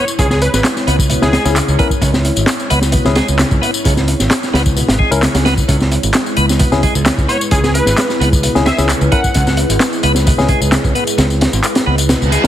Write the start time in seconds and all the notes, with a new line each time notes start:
Already playing: G#3 E4 C#5
0.08 tambourine
0.19 C#2 C#3 G#4, kick, closed hi-hat, tambourine
0.30 G#4, snare, tambourine
0.42 B4, closed hi-hat
0.53 G#1 B4, snare, tambourine
0.64 snare, clap, closed hi-hat, tambourine
0.76 snare, tambourine
0.87 C#2 B3, closed hi-hat
0.99 kick, tambourine
1.10 B2, closed hi-hat, tambourine
1.22 C#2 C#4 E4 G#4, snare, tambourine
1.33 G#3, snare, closed hi-hat
1.45 C#2 C#4 E4 G#4, snare, tambourine
1.56 C#3, clap, closed hi-hat, tambourine
1.68 C#2, tambourine
1.79 B3 C#4 E4 A#4, kick, closed hi-hat
1.90 kick, tambourine
2.01 C#2 C#3, kick, closed hi-hat, tambourine
2.14 snare, tambourine
2.25 closed hi-hat
2.36 G#1, closed hi-hat, tambourine
2.46 snare, clap, closed hi-hat, tambourine
2.60 tambourine
2.70 C#2 B3, closed hi-hat
2.81 snare, tambourine
2.92 B2, kick, closed hi-hat, tambourine
3.05 C#2 C#4 E4 G#4, snare, tambourine
3.15 G#3, snare, closed hi-hat
3.28 C#2, tambourine
3.39 C#3, snare, clap, closed hi-hat, tambourine
3.51 C#2, kick, tambourine
3.62 B3, closed hi-hat
3.74 tambourine
3.85 C#2 C#3, kick, closed hi-hat, tambourine
3.97 snare, tambourine
4.08 closed hi-hat
4.20 G#1, snare, tambourine
4.31 snare, clap, closed hi-hat, tambourine
4.43 snare, tambourine
4.53 C#2 B3, snare, closed hi-hat
4.66 kick, tambourine
4.76 B2, closed hi-hat, tambourine
4.88 G#1, snare, closed hi-hat, tambourine
4.99 G#3, kick
5.11 C#2 C#4 E4 A#4, closed hi-hat, tambourine
5.22 C#3, snare, clap, closed hi-hat, tambourine
5.34 C#2, snare, closed hi-hat, tambourine
5.45 B3, snare, closed hi-hat
5.57 kick, tambourine
5.68 C#2 C#3 B4, kick, closed hi-hat, tambourine
5.80 snare, tambourine
5.92 closed hi-hat
6.03 G#1, closed hi-hat, tambourine
6.13 snare, clap, closed hi-hat, tambourine
6.26 tambourine
6.37 C#2 B3, closed hi-hat
6.49 snare, tambourine
6.59 B2, kick, closed hi-hat, tambourine
6.72 C#2 C#4 E4 G#4, snare, tambourine
6.83 G#3, kick, closed hi-hat
6.95 C#2, tambourine
7.06 C#3, snare, clap, closed hi-hat, tambourine
7.18 C#2, kick, tambourine
7.28 B3 C#5, closed hi-hat
7.41 tambourine
7.51 C#2 C#3 G#4, kick, closed hi-hat, tambourine
7.64 G#4, snare, tambourine
7.74 B4, closed hi-hat
7.86 G#1, snare, tambourine
7.97 snare, clap, closed hi-hat, tambourine
8.10 snare, tambourine
8.20 C#2 B3, closed hi-hat
8.33 kick, tambourine
8.43 B2, closed hi-hat, tambourine
8.55 C#2 C#4 E4 G#4, snare, tambourine
8.66 G#3 E5, snare, closed hi-hat
8.78 C#2 C#4 E4 G#4, snare, tambourine
8.89 C#3, clap, closed hi-hat, tambourine
9.01 C#2, tambourine
9.12 B3 C#4 E4 A#4 F#5, kick, closed hi-hat
9.24 kick, tambourine
9.34 C#2 C#3, kick, closed hi-hat, tambourine
9.47 snare, tambourine
9.57 closed hi-hat
9.69 G#1, closed hi-hat, tambourine
9.80 snare, clap, closed hi-hat, tambourine
9.93 tambourine
10.03 C#2 B3, closed hi-hat
10.15 snare, tambourine
10.26 B2, kick, closed hi-hat, tambourine
10.38 C#2 C#4 E4 G#4, snare, tambourine
10.49 G#3, kick, closed hi-hat
10.61 C#2, tambourine
10.72 C#3, snare, clap, closed hi-hat, tambourine
10.84 C#2, kick, tambourine
10.95 B3, closed hi-hat
11.07 closed hi-hat, tambourine
11.18 C#2 C#3, snare, closed hi-hat, tambourine
11.30 tambourine
11.41 snare, closed hi-hat
11.53 G#1, tambourine
11.64 clap, closed hi-hat, tambourine
11.75 snare, closed hi-hat, tambourine
11.86 C#2 B3
11.98 closed hi-hat, tambourine
12.09 B2, snare, closed hi-hat, tambourine, reverse cymbal
12.22 C#2, tambourine
12.32 G#3, closed hi-hat
12.44 snare